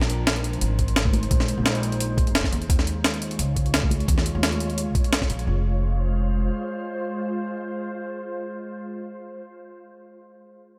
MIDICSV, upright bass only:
0, 0, Header, 1, 2, 480
1, 0, Start_track
1, 0, Key_signature, -4, "minor"
1, 0, Tempo, 346821
1, 1810, Time_signature, 4, 2, 24, 8
1, 14932, End_track
2, 0, Start_track
2, 0, Title_t, "Upright bass"
2, 0, Program_c, 0, 32
2, 0, Note_on_c, 0, 34, 92
2, 832, Note_off_c, 0, 34, 0
2, 850, Note_on_c, 0, 32, 88
2, 1792, Note_off_c, 0, 32, 0
2, 1812, Note_on_c, 0, 34, 87
2, 2158, Note_off_c, 0, 34, 0
2, 2180, Note_on_c, 0, 34, 88
2, 3251, Note_off_c, 0, 34, 0
2, 3251, Note_on_c, 0, 29, 76
2, 3492, Note_on_c, 0, 39, 90
2, 3512, Note_off_c, 0, 29, 0
2, 3708, Note_off_c, 0, 39, 0
2, 3731, Note_on_c, 0, 39, 89
2, 4672, Note_off_c, 0, 39, 0
2, 4689, Note_on_c, 0, 37, 85
2, 5631, Note_off_c, 0, 37, 0
2, 5649, Note_on_c, 0, 39, 90
2, 5997, Note_off_c, 0, 39, 0
2, 6018, Note_on_c, 0, 39, 89
2, 6850, Note_off_c, 0, 39, 0
2, 6850, Note_on_c, 0, 34, 71
2, 7312, Note_off_c, 0, 34, 0
2, 7330, Note_on_c, 0, 34, 80
2, 7547, Note_off_c, 0, 34, 0
2, 7571, Note_on_c, 0, 29, 84
2, 8955, Note_off_c, 0, 29, 0
2, 14932, End_track
0, 0, End_of_file